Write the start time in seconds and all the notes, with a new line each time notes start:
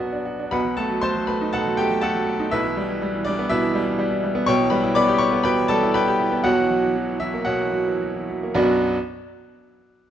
Already playing: B1 B2 F#3 D4 F#4 A#4 B4 F#5 A#5 B5
0.00 B3
0.13 D4
0.25 F#4
0.39 D4
0.51 B1 B2 B4 F#5 B5
0.65 F#3
0.77 A3 A4 A5
0.90 F#3
1.01 A3 C5 A5 C6
1.15 F#3
1.27 A3 B4 B5
1.41 D#4
1.53 B2 A4 F#5 A5
1.67 F#3
1.77 A3 G4 G5
1.91 F#3
2.01 A3 A4 F#5 A5
2.15 F#3
2.26 A3
2.40 D#4
2.51 B1 B2 E4 B4 E5
2.65 E3
2.77 G3
2.90 E3
3.02 G3
3.15 E3
3.25 G3 D4 D5
3.39 B3
3.49 B2 E4 B4 E5
3.63 E3
3.75 G3
3.86 E3
3.99 G3
4.11 E3
4.24 G3
4.35 B3
4.46 B1 B2 C#5 G5 C#6
4.60 E3
4.70 G3 B4 B5
4.84 E4
4.95 B3 D5 B5 D6
5.08 G4
5.18 E4 C#5 C#6
5.32 B3
5.44 B2 B4 G5 B5
5.58 E3
5.68 G3 A4 A5
5.83 E4
5.94 B3 B4 G5 B5
6.07 G4
6.19 E4
6.32 B3
6.44 B1 B2 F#4 C#5 F#5
6.58 E3
6.70 F#3
6.83 E3
6.96 F#3
7.09 E3
7.20 F#3 E4 E5
7.34 A#3
7.45 B2 F#4 C#5 F#5
7.60 E3
7.73 F#3
7.88 E3
8.02 F#3
8.15 E3
8.29 F#3
8.43 A#3
8.54 B1 F#2 F#3 B3 D4 F#4 B5